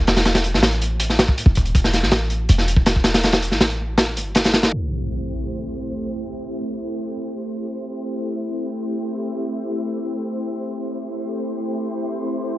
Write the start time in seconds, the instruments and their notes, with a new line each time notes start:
Already playing: 808-style bass E1
0.07 snare, closed hi-hat
0.17 snare, closed hi-hat
0.25 snare, closed hi-hat
0.35 snare, closed hi-hat
0.44 closed hi-hat
0.54 808-style bass A1, snare
0.63 snare, closed hi-hat
0.72 closed hi-hat
0.82 closed hi-hat
1.00 closed hi-hat
1.10 snare
1.19 snare, closed hi-hat
1.28 kick
1.38 closed hi-hat
1.46 808-style bass E1, kick
1.55 kick, closed hi-hat
1.65 closed hi-hat
1.75 kick, closed hi-hat
1.84 snare
1.93 snare, closed hi-hat
2.03 808-style bass A1, snare
2.11 snare, closed hi-hat
2.30 closed hi-hat
2.49 808-style bass E1, closed hi-hat
2.58 snare
2.68 closed hi-hat
2.76 kick
2.86 snare, closed hi-hat
2.96 kick
3.04 snare, closed hi-hat
3.14 snare, closed hi-hat
3.23 snare, closed hi-hat
3.32 snare, closed hi-hat
3.42 closed hi-hat
3.51 808-style bass A1, snare
3.61 snare, closed hi-hat
3.70 closed hi-hat
3.98 snare, closed hi-hat
4.17 808-style bass G1, closed hi-hat
4.35 snare, closed hi-hat
4.44 snare, closed hi-hat
4.54 snare, closed hi-hat
4.63 snare, closed hi-hat
4.73 string machine A3 C4 E4 G4 C5, synth texture C5 C6, impact
7.71 string machine A3 C4 E4 G4 C5, synth texture E6
10.69 string machine A3 C4 E4 G4 C5, synth texture C6